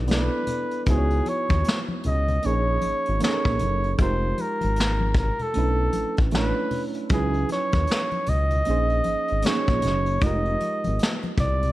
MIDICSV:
0, 0, Header, 1, 5, 480
1, 0, Start_track
1, 0, Tempo, 779221
1, 534, Time_signature, 4, 2, 24, 8
1, 7220, End_track
2, 0, Start_track
2, 0, Title_t, "Flugelhorn"
2, 0, Program_c, 0, 56
2, 74, Note_on_c, 0, 71, 95
2, 519, Note_off_c, 0, 71, 0
2, 556, Note_on_c, 0, 68, 93
2, 792, Note_on_c, 0, 73, 100
2, 801, Note_off_c, 0, 68, 0
2, 1116, Note_off_c, 0, 73, 0
2, 1275, Note_on_c, 0, 75, 90
2, 1516, Note_on_c, 0, 73, 106
2, 1526, Note_off_c, 0, 75, 0
2, 1985, Note_off_c, 0, 73, 0
2, 1994, Note_on_c, 0, 73, 98
2, 2439, Note_off_c, 0, 73, 0
2, 2474, Note_on_c, 0, 72, 95
2, 2715, Note_on_c, 0, 70, 99
2, 2725, Note_off_c, 0, 72, 0
2, 3185, Note_off_c, 0, 70, 0
2, 3194, Note_on_c, 0, 70, 90
2, 3342, Note_on_c, 0, 69, 104
2, 3351, Note_off_c, 0, 70, 0
2, 3814, Note_off_c, 0, 69, 0
2, 3914, Note_on_c, 0, 71, 95
2, 4214, Note_off_c, 0, 71, 0
2, 4393, Note_on_c, 0, 68, 98
2, 4607, Note_off_c, 0, 68, 0
2, 4634, Note_on_c, 0, 73, 98
2, 5108, Note_on_c, 0, 75, 103
2, 5117, Note_off_c, 0, 73, 0
2, 5825, Note_on_c, 0, 73, 107
2, 5834, Note_off_c, 0, 75, 0
2, 6306, Note_on_c, 0, 75, 96
2, 6316, Note_off_c, 0, 73, 0
2, 6873, Note_off_c, 0, 75, 0
2, 7024, Note_on_c, 0, 74, 91
2, 7220, Note_off_c, 0, 74, 0
2, 7220, End_track
3, 0, Start_track
3, 0, Title_t, "Reed electric piano"
3, 0, Program_c, 1, 4
3, 0, Control_c, 1, 64, 127
3, 0, Note_on_c, 1, 59, 69
3, 0, Note_on_c, 1, 62, 63
3, 0, Note_on_c, 1, 64, 66
3, 0, Note_on_c, 1, 69, 60
3, 0, Note_on_c, 1, 74, 64
3, 49, Note_off_c, 1, 59, 0
3, 49, Note_on_c, 1, 59, 79
3, 55, Note_off_c, 1, 62, 0
3, 55, Note_on_c, 1, 62, 68
3, 63, Note_off_c, 1, 64, 0
3, 63, Note_on_c, 1, 64, 67
3, 71, Note_off_c, 1, 69, 0
3, 71, Note_on_c, 1, 69, 63
3, 79, Note_off_c, 1, 74, 0
3, 79, Note_on_c, 1, 74, 84
3, 448, Note_off_c, 1, 59, 0
3, 451, Note_off_c, 1, 62, 0
3, 455, Note_off_c, 1, 64, 0
3, 459, Note_off_c, 1, 69, 0
3, 463, Note_off_c, 1, 74, 0
3, 533, Note_on_c, 1, 59, 72
3, 541, Note_on_c, 1, 63, 67
3, 543, Control_c, 1, 64, 0
3, 546, Note_on_c, 1, 64, 65
3, 553, Note_on_c, 1, 66, 70
3, 563, Note_on_c, 1, 72, 67
3, 599, Note_off_c, 1, 72, 0
3, 602, Note_on_c, 1, 73, 70
3, 667, Control_c, 1, 64, 127
3, 1272, Note_off_c, 1, 59, 0
3, 1276, Note_off_c, 1, 63, 0
3, 1278, Note_off_c, 1, 64, 0
3, 1282, Note_off_c, 1, 66, 0
3, 1306, Note_off_c, 1, 73, 0
3, 1492, Note_on_c, 1, 58, 72
3, 1499, Note_on_c, 1, 61, 58
3, 1502, Control_c, 1, 64, 0
3, 1505, Note_on_c, 1, 63, 63
3, 1514, Note_on_c, 1, 68, 67
3, 1523, Note_on_c, 1, 70, 61
3, 1559, Note_off_c, 1, 70, 0
3, 1562, Note_on_c, 1, 73, 74
3, 1597, Control_c, 1, 64, 127
3, 1902, Note_off_c, 1, 58, 0
3, 1905, Note_off_c, 1, 61, 0
3, 1908, Note_off_c, 1, 63, 0
3, 1913, Note_off_c, 1, 68, 0
3, 1937, Note_off_c, 1, 73, 0
3, 1972, Note_on_c, 1, 58, 77
3, 1979, Note_on_c, 1, 61, 71
3, 1985, Note_on_c, 1, 63, 68
3, 1993, Note_on_c, 1, 68, 70
3, 2000, Note_on_c, 1, 69, 65
3, 2038, Note_off_c, 1, 69, 0
3, 2041, Note_on_c, 1, 70, 87
3, 2369, Note_off_c, 1, 58, 0
3, 2373, Note_off_c, 1, 61, 0
3, 2376, Note_off_c, 1, 63, 0
3, 2380, Note_off_c, 1, 68, 0
3, 2404, Note_off_c, 1, 70, 0
3, 2451, Note_on_c, 1, 56, 72
3, 2458, Note_on_c, 1, 63, 62
3, 2461, Control_c, 1, 64, 0
3, 2467, Note_on_c, 1, 65, 74
3, 2472, Note_on_c, 1, 67, 61
3, 2481, Note_on_c, 1, 70, 82
3, 2580, Control_c, 1, 64, 127
3, 3191, Note_off_c, 1, 56, 0
3, 3194, Note_off_c, 1, 63, 0
3, 3199, Note_off_c, 1, 65, 0
3, 3201, Note_off_c, 1, 67, 0
3, 3206, Note_off_c, 1, 70, 0
3, 3411, Note_on_c, 1, 57, 64
3, 3420, Note_on_c, 1, 61, 64
3, 3423, Control_c, 1, 64, 0
3, 3426, Note_on_c, 1, 62, 65
3, 3436, Note_on_c, 1, 64, 65
3, 3440, Note_on_c, 1, 71, 72
3, 3521, Control_c, 1, 64, 127
3, 3821, Note_off_c, 1, 57, 0
3, 3826, Note_off_c, 1, 61, 0
3, 3828, Note_off_c, 1, 62, 0
3, 3833, Note_off_c, 1, 64, 0
3, 3836, Note_off_c, 1, 71, 0
3, 3896, Note_on_c, 1, 57, 79
3, 3901, Note_on_c, 1, 61, 65
3, 3911, Note_on_c, 1, 62, 76
3, 3917, Note_on_c, 1, 64, 66
3, 3924, Note_on_c, 1, 73, 86
3, 4291, Note_off_c, 1, 57, 0
3, 4294, Note_off_c, 1, 61, 0
3, 4299, Note_off_c, 1, 62, 0
3, 4301, Note_off_c, 1, 64, 0
3, 4305, Note_off_c, 1, 73, 0
3, 4374, Note_on_c, 1, 54, 79
3, 4378, Note_on_c, 1, 61, 65
3, 4381, Control_c, 1, 64, 0
3, 4388, Note_on_c, 1, 63, 67
3, 4395, Note_on_c, 1, 64, 68
3, 4404, Note_on_c, 1, 71, 83
3, 4482, Control_c, 1, 64, 127
3, 5112, Note_off_c, 1, 54, 0
3, 5114, Note_off_c, 1, 61, 0
3, 5119, Note_off_c, 1, 63, 0
3, 5123, Note_off_c, 1, 64, 0
3, 5127, Note_off_c, 1, 71, 0
3, 5333, Note_on_c, 1, 58, 65
3, 5341, Note_on_c, 1, 61, 65
3, 5342, Control_c, 1, 64, 0
3, 5349, Note_on_c, 1, 63, 60
3, 5356, Note_on_c, 1, 68, 67
3, 5365, Note_on_c, 1, 72, 76
3, 5460, Control_c, 1, 64, 127
3, 5742, Note_off_c, 1, 58, 0
3, 5746, Note_off_c, 1, 61, 0
3, 5750, Note_off_c, 1, 63, 0
3, 5754, Note_off_c, 1, 68, 0
3, 5758, Note_off_c, 1, 72, 0
3, 5812, Note_on_c, 1, 58, 73
3, 5822, Note_on_c, 1, 61, 69
3, 5829, Note_on_c, 1, 63, 73
3, 5835, Note_on_c, 1, 68, 65
3, 5844, Note_on_c, 1, 73, 84
3, 6209, Note_off_c, 1, 58, 0
3, 6214, Note_off_c, 1, 61, 0
3, 6218, Note_off_c, 1, 63, 0
3, 6221, Note_off_c, 1, 68, 0
3, 6225, Note_off_c, 1, 73, 0
3, 6295, Note_on_c, 1, 56, 69
3, 6301, Control_c, 1, 64, 0
3, 6301, Note_on_c, 1, 63, 61
3, 6311, Note_on_c, 1, 65, 67
3, 6317, Note_on_c, 1, 67, 62
3, 6323, Note_on_c, 1, 70, 88
3, 6426, Control_c, 1, 64, 127
3, 7033, Note_off_c, 1, 56, 0
3, 7036, Note_off_c, 1, 63, 0
3, 7041, Note_off_c, 1, 65, 0
3, 7044, Note_off_c, 1, 67, 0
3, 7047, Note_off_c, 1, 70, 0
3, 7220, End_track
4, 0, Start_track
4, 0, Title_t, "Analog synth bass"
4, 0, Program_c, 2, 38
4, 0, Note_on_c, 2, 35, 99
4, 181, Note_off_c, 2, 35, 0
4, 540, Note_on_c, 2, 37, 105
4, 748, Note_off_c, 2, 37, 0
4, 931, Note_on_c, 2, 39, 93
4, 1007, Note_off_c, 2, 39, 0
4, 1269, Note_on_c, 2, 37, 92
4, 1473, Note_off_c, 2, 37, 0
4, 1511, Note_on_c, 2, 34, 101
4, 1714, Note_off_c, 2, 34, 0
4, 1753, Note_on_c, 2, 32, 46
4, 1809, Note_off_c, 2, 32, 0
4, 1901, Note_on_c, 2, 32, 101
4, 1972, Note_off_c, 2, 32, 0
4, 2134, Note_on_c, 2, 34, 82
4, 2208, Note_off_c, 2, 34, 0
4, 2231, Note_on_c, 2, 30, 90
4, 2434, Note_off_c, 2, 30, 0
4, 2464, Note_on_c, 2, 29, 106
4, 2670, Note_off_c, 2, 29, 0
4, 2860, Note_on_c, 2, 32, 112
4, 3274, Note_off_c, 2, 32, 0
4, 3427, Note_on_c, 2, 35, 93
4, 3632, Note_off_c, 2, 35, 0
4, 3669, Note_on_c, 2, 33, 46
4, 3726, Note_off_c, 2, 33, 0
4, 3816, Note_on_c, 2, 33, 88
4, 4022, Note_off_c, 2, 33, 0
4, 4380, Note_on_c, 2, 37, 101
4, 4588, Note_off_c, 2, 37, 0
4, 4770, Note_on_c, 2, 39, 101
4, 4846, Note_off_c, 2, 39, 0
4, 5106, Note_on_c, 2, 37, 97
4, 5312, Note_off_c, 2, 37, 0
4, 5349, Note_on_c, 2, 34, 108
4, 5553, Note_off_c, 2, 34, 0
4, 5587, Note_on_c, 2, 32, 52
4, 5644, Note_off_c, 2, 32, 0
4, 5740, Note_on_c, 2, 32, 86
4, 5812, Note_off_c, 2, 32, 0
4, 5969, Note_on_c, 2, 34, 92
4, 6046, Note_off_c, 2, 34, 0
4, 6069, Note_on_c, 2, 30, 92
4, 6273, Note_off_c, 2, 30, 0
4, 6299, Note_on_c, 2, 29, 107
4, 6507, Note_off_c, 2, 29, 0
4, 6697, Note_on_c, 2, 32, 100
4, 6770, Note_off_c, 2, 32, 0
4, 7014, Note_on_c, 2, 36, 97
4, 7220, Note_off_c, 2, 36, 0
4, 7220, End_track
5, 0, Start_track
5, 0, Title_t, "Drums"
5, 45, Note_on_c, 9, 42, 84
5, 56, Note_on_c, 9, 63, 73
5, 69, Note_on_c, 9, 38, 126
5, 107, Note_off_c, 9, 42, 0
5, 117, Note_off_c, 9, 63, 0
5, 130, Note_off_c, 9, 38, 0
5, 287, Note_on_c, 9, 42, 79
5, 290, Note_on_c, 9, 62, 29
5, 290, Note_on_c, 9, 64, 64
5, 348, Note_off_c, 9, 42, 0
5, 352, Note_off_c, 9, 62, 0
5, 352, Note_off_c, 9, 64, 0
5, 437, Note_on_c, 9, 42, 38
5, 499, Note_off_c, 9, 42, 0
5, 528, Note_on_c, 9, 42, 92
5, 534, Note_on_c, 9, 36, 101
5, 590, Note_off_c, 9, 42, 0
5, 595, Note_off_c, 9, 36, 0
5, 679, Note_on_c, 9, 42, 36
5, 740, Note_off_c, 9, 42, 0
5, 774, Note_on_c, 9, 42, 70
5, 774, Note_on_c, 9, 63, 50
5, 836, Note_off_c, 9, 42, 0
5, 836, Note_off_c, 9, 63, 0
5, 918, Note_on_c, 9, 63, 69
5, 920, Note_on_c, 9, 42, 49
5, 925, Note_on_c, 9, 36, 92
5, 980, Note_off_c, 9, 63, 0
5, 981, Note_off_c, 9, 42, 0
5, 986, Note_off_c, 9, 36, 0
5, 1011, Note_on_c, 9, 42, 77
5, 1037, Note_on_c, 9, 38, 114
5, 1073, Note_off_c, 9, 42, 0
5, 1099, Note_off_c, 9, 38, 0
5, 1161, Note_on_c, 9, 63, 61
5, 1223, Note_off_c, 9, 63, 0
5, 1252, Note_on_c, 9, 42, 63
5, 1261, Note_on_c, 9, 64, 70
5, 1313, Note_off_c, 9, 42, 0
5, 1323, Note_off_c, 9, 64, 0
5, 1405, Note_on_c, 9, 42, 44
5, 1405, Note_on_c, 9, 64, 67
5, 1466, Note_off_c, 9, 42, 0
5, 1467, Note_off_c, 9, 64, 0
5, 1493, Note_on_c, 9, 42, 73
5, 1497, Note_on_c, 9, 62, 34
5, 1554, Note_off_c, 9, 42, 0
5, 1559, Note_off_c, 9, 62, 0
5, 1732, Note_on_c, 9, 42, 65
5, 1733, Note_on_c, 9, 62, 28
5, 1733, Note_on_c, 9, 63, 63
5, 1794, Note_off_c, 9, 42, 0
5, 1795, Note_off_c, 9, 62, 0
5, 1795, Note_off_c, 9, 63, 0
5, 1882, Note_on_c, 9, 42, 46
5, 1944, Note_off_c, 9, 42, 0
5, 1972, Note_on_c, 9, 42, 93
5, 1981, Note_on_c, 9, 62, 32
5, 1981, Note_on_c, 9, 63, 66
5, 1995, Note_on_c, 9, 38, 125
5, 2033, Note_off_c, 9, 42, 0
5, 2042, Note_off_c, 9, 62, 0
5, 2042, Note_off_c, 9, 63, 0
5, 2057, Note_off_c, 9, 38, 0
5, 2126, Note_on_c, 9, 36, 84
5, 2188, Note_off_c, 9, 36, 0
5, 2212, Note_on_c, 9, 42, 80
5, 2214, Note_on_c, 9, 62, 29
5, 2214, Note_on_c, 9, 64, 61
5, 2273, Note_off_c, 9, 42, 0
5, 2275, Note_off_c, 9, 62, 0
5, 2275, Note_off_c, 9, 64, 0
5, 2363, Note_on_c, 9, 42, 42
5, 2425, Note_off_c, 9, 42, 0
5, 2452, Note_on_c, 9, 42, 85
5, 2456, Note_on_c, 9, 36, 97
5, 2456, Note_on_c, 9, 62, 34
5, 2513, Note_off_c, 9, 42, 0
5, 2517, Note_off_c, 9, 36, 0
5, 2518, Note_off_c, 9, 62, 0
5, 2695, Note_on_c, 9, 42, 61
5, 2697, Note_on_c, 9, 62, 34
5, 2697, Note_on_c, 9, 63, 48
5, 2757, Note_off_c, 9, 42, 0
5, 2759, Note_off_c, 9, 62, 0
5, 2759, Note_off_c, 9, 63, 0
5, 2839, Note_on_c, 9, 63, 59
5, 2840, Note_on_c, 9, 42, 53
5, 2901, Note_off_c, 9, 42, 0
5, 2901, Note_off_c, 9, 63, 0
5, 2932, Note_on_c, 9, 42, 70
5, 2958, Note_on_c, 9, 38, 103
5, 2993, Note_off_c, 9, 42, 0
5, 3019, Note_off_c, 9, 38, 0
5, 3081, Note_on_c, 9, 63, 67
5, 3143, Note_off_c, 9, 63, 0
5, 3169, Note_on_c, 9, 36, 101
5, 3173, Note_on_c, 9, 42, 65
5, 3178, Note_on_c, 9, 62, 33
5, 3178, Note_on_c, 9, 64, 66
5, 3231, Note_off_c, 9, 36, 0
5, 3235, Note_off_c, 9, 42, 0
5, 3240, Note_off_c, 9, 62, 0
5, 3240, Note_off_c, 9, 64, 0
5, 3323, Note_on_c, 9, 64, 62
5, 3324, Note_on_c, 9, 42, 40
5, 3385, Note_off_c, 9, 42, 0
5, 3385, Note_off_c, 9, 64, 0
5, 3410, Note_on_c, 9, 42, 67
5, 3413, Note_on_c, 9, 62, 34
5, 3471, Note_off_c, 9, 42, 0
5, 3475, Note_off_c, 9, 62, 0
5, 3649, Note_on_c, 9, 42, 73
5, 3653, Note_on_c, 9, 63, 62
5, 3711, Note_off_c, 9, 42, 0
5, 3715, Note_off_c, 9, 63, 0
5, 3799, Note_on_c, 9, 42, 39
5, 3809, Note_on_c, 9, 36, 93
5, 3861, Note_off_c, 9, 42, 0
5, 3870, Note_off_c, 9, 36, 0
5, 3886, Note_on_c, 9, 42, 84
5, 3899, Note_on_c, 9, 62, 35
5, 3899, Note_on_c, 9, 63, 72
5, 3910, Note_on_c, 9, 38, 127
5, 3948, Note_off_c, 9, 42, 0
5, 3961, Note_off_c, 9, 62, 0
5, 3961, Note_off_c, 9, 63, 0
5, 3971, Note_off_c, 9, 38, 0
5, 4129, Note_on_c, 9, 46, 61
5, 4133, Note_on_c, 9, 64, 65
5, 4191, Note_off_c, 9, 46, 0
5, 4195, Note_off_c, 9, 64, 0
5, 4277, Note_on_c, 9, 42, 41
5, 4339, Note_off_c, 9, 42, 0
5, 4368, Note_on_c, 9, 42, 93
5, 4374, Note_on_c, 9, 36, 113
5, 4379, Note_on_c, 9, 62, 34
5, 4430, Note_off_c, 9, 42, 0
5, 4436, Note_off_c, 9, 36, 0
5, 4440, Note_off_c, 9, 62, 0
5, 4519, Note_on_c, 9, 42, 36
5, 4580, Note_off_c, 9, 42, 0
5, 4611, Note_on_c, 9, 42, 65
5, 4618, Note_on_c, 9, 63, 50
5, 4632, Note_on_c, 9, 38, 31
5, 4673, Note_off_c, 9, 42, 0
5, 4680, Note_off_c, 9, 63, 0
5, 4693, Note_off_c, 9, 38, 0
5, 4757, Note_on_c, 9, 42, 50
5, 4759, Note_on_c, 9, 63, 73
5, 4763, Note_on_c, 9, 36, 93
5, 4819, Note_off_c, 9, 42, 0
5, 4821, Note_off_c, 9, 63, 0
5, 4825, Note_off_c, 9, 36, 0
5, 4848, Note_on_c, 9, 42, 73
5, 4855, Note_on_c, 9, 62, 27
5, 4874, Note_on_c, 9, 38, 109
5, 4909, Note_off_c, 9, 42, 0
5, 4917, Note_off_c, 9, 62, 0
5, 4935, Note_off_c, 9, 38, 0
5, 4995, Note_on_c, 9, 42, 37
5, 5001, Note_on_c, 9, 63, 65
5, 5057, Note_off_c, 9, 42, 0
5, 5063, Note_off_c, 9, 63, 0
5, 5089, Note_on_c, 9, 42, 68
5, 5097, Note_on_c, 9, 62, 33
5, 5097, Note_on_c, 9, 64, 70
5, 5151, Note_off_c, 9, 42, 0
5, 5158, Note_off_c, 9, 62, 0
5, 5158, Note_off_c, 9, 64, 0
5, 5238, Note_on_c, 9, 42, 45
5, 5245, Note_on_c, 9, 64, 62
5, 5300, Note_off_c, 9, 42, 0
5, 5306, Note_off_c, 9, 64, 0
5, 5327, Note_on_c, 9, 42, 73
5, 5335, Note_on_c, 9, 62, 33
5, 5389, Note_off_c, 9, 42, 0
5, 5396, Note_off_c, 9, 62, 0
5, 5480, Note_on_c, 9, 42, 36
5, 5541, Note_off_c, 9, 42, 0
5, 5566, Note_on_c, 9, 42, 65
5, 5573, Note_on_c, 9, 63, 67
5, 5628, Note_off_c, 9, 42, 0
5, 5635, Note_off_c, 9, 63, 0
5, 5715, Note_on_c, 9, 42, 42
5, 5777, Note_off_c, 9, 42, 0
5, 5803, Note_on_c, 9, 42, 94
5, 5819, Note_on_c, 9, 63, 72
5, 5827, Note_on_c, 9, 38, 127
5, 5865, Note_off_c, 9, 42, 0
5, 5880, Note_off_c, 9, 63, 0
5, 5888, Note_off_c, 9, 38, 0
5, 5956, Note_on_c, 9, 42, 37
5, 5963, Note_on_c, 9, 36, 86
5, 6017, Note_off_c, 9, 42, 0
5, 6024, Note_off_c, 9, 36, 0
5, 6048, Note_on_c, 9, 42, 81
5, 6054, Note_on_c, 9, 64, 61
5, 6075, Note_on_c, 9, 38, 39
5, 6109, Note_off_c, 9, 42, 0
5, 6116, Note_off_c, 9, 64, 0
5, 6137, Note_off_c, 9, 38, 0
5, 6196, Note_on_c, 9, 42, 41
5, 6258, Note_off_c, 9, 42, 0
5, 6288, Note_on_c, 9, 42, 79
5, 6293, Note_on_c, 9, 36, 109
5, 6296, Note_on_c, 9, 62, 33
5, 6349, Note_off_c, 9, 42, 0
5, 6355, Note_off_c, 9, 36, 0
5, 6357, Note_off_c, 9, 62, 0
5, 6439, Note_on_c, 9, 42, 33
5, 6500, Note_off_c, 9, 42, 0
5, 6531, Note_on_c, 9, 42, 66
5, 6537, Note_on_c, 9, 63, 47
5, 6592, Note_off_c, 9, 42, 0
5, 6599, Note_off_c, 9, 63, 0
5, 6677, Note_on_c, 9, 42, 51
5, 6680, Note_on_c, 9, 63, 67
5, 6738, Note_off_c, 9, 42, 0
5, 6741, Note_off_c, 9, 63, 0
5, 6769, Note_on_c, 9, 42, 79
5, 6795, Note_on_c, 9, 38, 110
5, 6830, Note_off_c, 9, 42, 0
5, 6856, Note_off_c, 9, 38, 0
5, 6915, Note_on_c, 9, 42, 35
5, 6921, Note_on_c, 9, 63, 66
5, 6976, Note_off_c, 9, 42, 0
5, 6983, Note_off_c, 9, 63, 0
5, 7007, Note_on_c, 9, 36, 98
5, 7009, Note_on_c, 9, 42, 71
5, 7020, Note_on_c, 9, 62, 34
5, 7020, Note_on_c, 9, 64, 71
5, 7069, Note_off_c, 9, 36, 0
5, 7071, Note_off_c, 9, 42, 0
5, 7082, Note_off_c, 9, 62, 0
5, 7082, Note_off_c, 9, 64, 0
5, 7161, Note_on_c, 9, 42, 42
5, 7165, Note_on_c, 9, 64, 63
5, 7220, Note_off_c, 9, 42, 0
5, 7220, Note_off_c, 9, 64, 0
5, 7220, End_track
0, 0, End_of_file